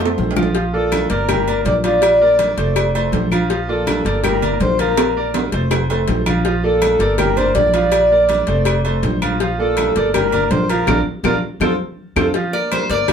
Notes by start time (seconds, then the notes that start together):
Already playing: F2
0.00 A3 A4 C5, high conga
0.06 high timbale
0.18 A#1, high conga, low timbale
0.31 low timbale
0.36 F3 F4 F5, low bongo, high conga, claves
0.43 low timbale
0.55 F3 F4 F5, cowbell, high conga
0.73 A#3 F4 A4 D5, high conga
0.92 cowbell, high conga, low timbale, low agogo, claves
1.09 G1 A#3 A#4 D5, cowbell, high conga
1.28 G3 G4 G5, cowbell, high conga, low conga, low agogo, claves
1.48 A#3 A#4 D5, high conga, low agogo
1.65 A#1 D5, cowbell, high conga, low timbale
1.84 F3 F4 D5 F5, cowbell, high conga, low agogo
2.02 cowbell, high conga, low agogo, claves
2.21 A#3 A#4 D5, high conga
2.39 cowbell, high conga, low timbale, low agogo
2.57 F1 A3 A4 C5, cowbell, high conga
2.76 cowbell, high conga, low agogo, claves
2.95 A3 A4 C5, high conga, low agogo
3.12 A#1, cowbell, high conga, low timbale
3.31 F3 F4 F5, high conga, low agogo, claves
3.50 F3 F4 F5, cowbell
3.68 A#3 F4 A4 D5, high conga
3.87 cowbell, high conga, low timbale, low agogo, claves
4.05 G1 A#3 A#4 D5, cowbell, high conga
4.24 G3 G4 A#4 G5, cowbell, high conga, low conga, low agogo, claves
4.42 A#3 A#4 D5, high conga, low conga, low agogo
4.60 A#1 C5, cowbell, high conga, low timbale
4.79 F3 F4 A#4 F5, cowbell, high conga, low agogo
4.97 cowbell, high conga, high timbale, low agogo, claves
5.17 A#3 A#4 D5, high conga
5.34 cowbell, high conga, high timbale, low agogo
5.52 F1 A3 A4 C5, cowbell, high conga
5.71 cowbell, high conga, low timbale, low agogo, claves
5.90 A3 A4 C5, high conga, low timbale, low agogo
6.08 A#1, cowbell, high conga, low timbale
6.26 F3 F4 F5, high conga, low timbale, low agogo, claves
6.45 F3 F4 F5, cowbell, high conga
6.63 A#3 F4 A4 D5, high conga
6.82 cowbell, high conga, low timbale, low agogo, claves
6.99 G1 A#3 A#4 D5, cowbell, high conga
7.18 G3 G4 A#4 G5, cowbell, high conga, low conga, low agogo, claves
7.37 A#3 A#4 C5 D5, high conga, low conga, low agogo
7.55 A#1 D5, cowbell, high conga, low timbale
7.74 F3 F4 D5 F5, cowbell, high conga, low agogo
7.92 cowbell, high conga, low agogo, claves
8.11 A#3 A#4 D5, high conga
8.29 cowbell, high conga, low timbale, low agogo
8.47 F1 A3 A4 C5, cowbell, high conga
8.65 cowbell, high conga, low agogo, claves
8.85 A3 A4 C5, high conga, low agogo
9.03 A#1, cowbell, high conga, low timbale
9.22 F3 F4 F5, high conga, low agogo, claves
9.40 F3 F4 F5, cowbell, high conga
9.59 A#3 F4 A4 D5, high conga
9.77 cowbell, high conga, low timbale, low agogo, claves
9.96 G1 A#3 A#4 D5, cowbell, high conga
10.14 G3 G4 A#4 G5, cowbell, high conga, low conga, low agogo, claves
10.32 A#3 A#4 D5, high conga, low conga, low agogo
10.51 A#1 C5, cowbell, high conga, low timbale
10.69 F3 F4 A#4 F5, cowbell, low agogo
10.87 A#1 D4 F4 A#4, cowbell, high conga, high timbale, claves
11.23 A#1 D4 F4 A#4, cowbell, high conga, high timbale, claves
11.60 F2 F4 A4 C5, cowbell, high conga, high timbale, claves
12.16 F2 F4 A4 C5, cowbell, high conga, high timbale, claves
12.34 F3 F4 F5, cowbell, high conga
12.53 A#3 A#4 D5, high conga
12.72 C5, cowbell, high conga, low timbale, low agogo, claves
12.89 G1 A#3 A#4 D5, cowbell, high conga
13.08 F3 F4 F5, cowbell, high conga, low conga, low agogo, claves